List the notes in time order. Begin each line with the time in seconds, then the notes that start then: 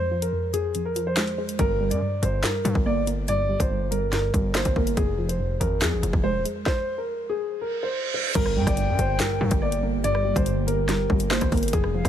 Already playing: F2 F3 G#3 C5
0.11 F3
0.22 A#4, closed hi-hat
0.32 F2
0.53 F2 G#4, closed hi-hat
0.75 F2, closed hi-hat
0.85 A#4
0.96 F3, closed hi-hat
1.07 C5
1.17 G#3, snare, clap, closed hi-hat
1.27 closed hi-hat
1.38 G#3 C5
1.49 closed hi-hat
1.59 G1 G2 A#4, kick, closed hi-hat
1.80 G3
1.91 G2 D5, closed hi-hat
2.02 G2
2.22 G1 G2 C5, closed hi-hat
2.44 G2 A#4, snare, clap, closed hi-hat
2.65 G2 G3, closed hi-hat
2.75 G1, kick
2.86 A#3 D5
3.07 A#3, closed hi-hat
3.28 G2 D5, closed hi-hat
3.49 G3
3.60 G1 C5, kick, closed hi-hat
3.71 G2
3.91 G2 A#4, closed hi-hat
4.12 G2 A#4, snare, closed hi-hat
4.34 G1 G3, kick, closed hi-hat
4.55 A#3 C5, snare, clap, closed hi-hat
4.65 G1, kick, closed hi-hat
4.76 G1 A#3 A#4, kick
4.87 closed hi-hat
4.97 F1 F2 G#4, kick, closed hi-hat
5.18 F3
5.29 C5, closed hi-hat
5.40 F2
5.60 G#1 F2 A#4, closed hi-hat
5.82 F2 G#4, snare, clap, closed hi-hat
5.92 G#1
6.03 F1 F3, closed hi-hat
6.13 F1, kick
6.24 G#3 C5
6.35 D#1
6.45 G#3, closed hi-hat
6.66 C5, kick, snare
6.98 A#4
7.29 G#4
7.51 reverse cymbal
7.61 A#4
7.83 C5
8.14 C5
8.35 G1 G2 D3 G3 A#3 G4 A#4, kick, closed hi-hat, crash, impact
8.46 cross-stick
8.56 G2 G3 G5
8.67 G1 D5, kick, cross-stick, closed hi-hat
8.77 G2, closed hi-hat
8.88 G2
8.99 G1 G2 C5, closed hi-hat
9.20 G2 A#4, snare, clap, closed hi-hat
9.41 G2 G3
9.51 G1, kick, closed hi-hat
9.62 A#3 D5
9.72 closed hi-hat
9.83 A#3
10.04 G2 D5, closed hi-hat
10.15 cross-stick
10.25 G3
10.36 G1 C5, kick, closed hi-hat
10.46 G2, closed hi-hat
10.67 G2 A#4, closed hi-hat
10.88 G2 A#4, snare, closed hi-hat
11.10 G1 G3, kick
11.20 closed hi-hat
11.30 A#3 C5, snare, clap
11.41 G1, kick, cross-stick, closed hi-hat
11.52 G1 A#3 A#4, kick, closed hi-hat, open hi-hat
11.57 closed hi-hat
11.63 closed hi-hat
11.68 closed hi-hat
11.73 F1 F2 F3 G#3 C4 G#4, kick, closed hi-hat
11.84 cross-stick
11.94 F3 F5
12.05 F1 C5, kick, cross-stick, closed hi-hat